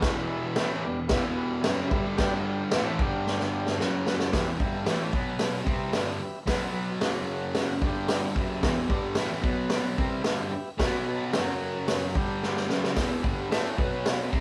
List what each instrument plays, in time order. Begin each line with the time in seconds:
Already playing: transistor combo organ G4 B4
0.02 distorted electric guitar E2 B2 E3, kick, snare, crash
0.28 transistor combo organ G4 B4 E5
0.55 distorted electric guitar A2 E3 A3, transistor combo organ G4 B4 E5, snare, crash
0.81 transistor combo organ G4 B4 D5
0.86 distorted electric guitar E2 B2
1.07 transistor combo organ G4 B4 E5, kick, snare, crash
1.11 distorted electric guitar E2 B2 E3
1.35 transistor combo organ G4 B4 F#5
1.61 transistor combo organ G4 B4 E5, snare, crash
1.66 distorted electric guitar F#2 C#3 F#3
1.86 transistor combo organ G4 B4 E5
1.91 distorted electric guitar G2 D3 G3, kick
2.16 distorted electric guitar G2 D3 G3, transistor combo organ G4 D5 G5, kick, snare, crash
2.47 transistor combo organ G4 D5 G5
2.71 distorted electric guitar A2 E3 A3, transistor combo organ B4, snare, crash
2.77 transistor combo organ E5 G5
2.99 distorted electric guitar G2 D3 G3, transistor combo organ G4 D5, kick
3.04 transistor combo organ G5
3.27 snare
3.40 snare
3.53 transistor combo organ G4 D5 G5
3.66 snare
3.79 distorted electric guitar F#2 C#3 F#3, transistor combo organ F#4 C#5 F#5, snare
4.06 transistor combo organ F#4 C#5 F#5, snare
4.20 snare
4.33 distorted electric guitar E2 B2 E3, transistor combo organ G4 B4 E5, kick, snare, open hi-hat
4.59 distorted electric guitar G2 D3 G3, transistor combo organ G4, kick
4.63 transistor combo organ B4 E5
4.85 distorted electric guitar A2 E3 A3, transistor combo organ G4 B4 E5, snare, open hi-hat
5.13 distorted electric guitar B2 F#3 B3, transistor combo organ F#4 B4 F#5, kick
5.39 snare, open hi-hat
5.65 distorted electric guitar C3 G3 C4, transistor combo organ G4, kick
5.69 transistor combo organ B4 E5
5.93 distorted electric guitar G2 D3 G3, snare, open hi-hat
6.20 transistor combo organ G4 B4, muted distorted electric guitar stroke
6.25 transistor combo organ E5
6.46 distorted electric guitar B2 F#3 B3, transistor combo organ F#4 B4, kick, snare, open hi-hat
6.52 transistor combo organ F#5
6.73 transistor combo organ F#4 B4 F#5
7.01 distorted electric guitar F#2 C#3 F#3, transistor combo organ F#4 C#5, snare, open hi-hat
7.05 transistor combo organ F#5
7.31 transistor combo organ F#4 C#5 F#5
7.55 transistor combo organ F#4, snare, open hi-hat
7.59 transistor combo organ C#5 F#5
7.82 distorted electric guitar G2 D3 G3, kick
7.86 transistor combo organ G4 D5 G5
8.08 snare, open hi-hat
8.36 distorted electric guitar F#2 C#3 F#3, transistor combo organ G4 B4, kick
8.40 transistor combo organ E5
8.63 distorted electric guitar E2 B2 E3, kick, snare, open hi-hat
8.89 distorted electric guitar G2 D3 G3, transistor combo organ G4 B4 D5, kick
9.15 distorted electric guitar A2 E3 A3, transistor combo organ G4 B4 E5, snare, open hi-hat
9.42 distorted electric guitar B2 F#3 B3, transistor combo organ F#4, kick
9.46 transistor combo organ B4 F#5
9.70 snare, open hi-hat
9.96 distorted electric guitar C3 G3 C4, transistor combo organ G4 B4 E5, kick
10.23 distorted electric guitar G2 D3 G3, snare, open hi-hat
10.51 transistor combo organ G4 B4 E5, muted distorted electric guitar stroke
10.78 distorted electric guitar B2 F#3 B3, transistor combo organ F#4 B4 F#5, kick, snare, open hi-hat
11.06 transistor combo organ F#4 B4 A5
11.32 distorted electric guitar F#2 C#3 F#3, transistor combo organ F#4 C#5 F#5, snare, open hi-hat
11.60 transistor combo organ F#4 C#5 F#5
11.86 transistor combo organ F#4 C#5 F#5, snare, open hi-hat
12.12 distorted electric guitar G2 D3, transistor combo organ G4 D5 G5, kick
12.17 distorted electric guitar G3
12.43 snare
12.56 snare
12.67 distorted electric guitar F#2 C#3 F#3, transistor combo organ G4 B4 E5, snare
12.84 snare
12.96 distorted electric guitar E2 B2 E3, kick, snare, open hi-hat
13.22 distorted electric guitar G2 D3 G3, transistor combo organ G4 B4 F#5, kick
13.48 distorted electric guitar A2 E3 A3, transistor combo organ G4 B4 E5
13.52 snare, open hi-hat
13.76 distorted electric guitar B2 F#3 B3, transistor combo organ F#4 B4 F#5, kick
14.06 snare, open hi-hat
14.31 distorted electric guitar C3 G3 C4, transistor combo organ G4 B4 E5, kick